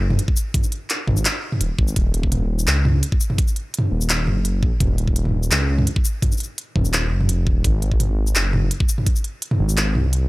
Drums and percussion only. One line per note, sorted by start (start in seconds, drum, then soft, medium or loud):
0.10 mid tom medium
0.19 closed hi-hat medium
0.28 kick loud
0.37 shaker medium
0.54 kick loud
0.54 closed hi-hat medium
0.54 mid tom medium
0.64 shaker soft
0.72 closed hi-hat soft
0.90 clap medium
0.90 closed hi-hat medium
1.07 kick medium
1.07 mid tom medium
1.17 shaker soft
1.25 clap loud
1.25 closed hi-hat medium
1.52 mid tom medium
1.61 closed hi-hat medium
1.79 kick loud
1.88 shaker soft
1.96 kick loud
1.96 closed hi-hat medium
2.14 closed hi-hat soft
2.23 kick medium
2.32 closed hi-hat medium
2.32 mid tom medium
2.59 shaker soft
2.67 clap loud
2.67 closed hi-hat medium
2.85 mid tom medium
3.03 closed hi-hat medium
3.12 kick loud
3.21 shaker medium
3.30 mid tom medium
3.38 kick loud
3.38 closed hi-hat medium
3.48 shaker soft
3.56 closed hi-hat soft
3.74 closed hi-hat medium
3.79 mid tom medium
4.01 shaker soft
4.10 clap loud
4.10 closed hi-hat medium
4.27 mid tom medium
4.45 closed hi-hat medium
4.63 kick loud
4.80 kick loud
4.80 closed hi-hat medium
4.80 mid tom medium
4.98 closed hi-hat soft
5.08 kick medium
5.16 closed hi-hat medium
5.25 mid tom medium
5.43 shaker soft
5.51 clap loud
5.51 closed hi-hat medium
5.79 mid tom medium
5.87 closed hi-hat medium
5.96 kick loud
6.05 shaker medium
6.22 kick loud
6.22 closed hi-hat medium
6.22 mid tom medium
6.32 shaker soft
6.37 closed hi-hat soft
6.37 shaker soft
6.43 shaker soft
6.58 closed hi-hat medium
6.76 kick medium
6.76 mid tom medium
6.85 shaker soft
6.93 clap loud
6.93 closed hi-hat medium
7.21 mid tom soft
7.29 closed hi-hat medium
7.47 kick loud
7.64 kick loud
7.64 closed hi-hat medium
7.82 closed hi-hat soft
7.92 kick medium
8.00 closed hi-hat medium
8.00 mid tom medium
8.27 shaker soft
8.36 clap loud
8.36 closed hi-hat medium
8.53 mid tom medium
8.71 closed hi-hat medium
8.80 kick loud
8.89 shaker medium
8.98 mid tom medium
9.06 kick loud
9.06 closed hi-hat medium
9.16 shaker soft
9.24 closed hi-hat soft
9.42 closed hi-hat medium
9.51 mid tom medium
9.69 shaker soft
9.77 clap loud
9.77 closed hi-hat medium
9.95 mid tom medium
10.13 closed hi-hat medium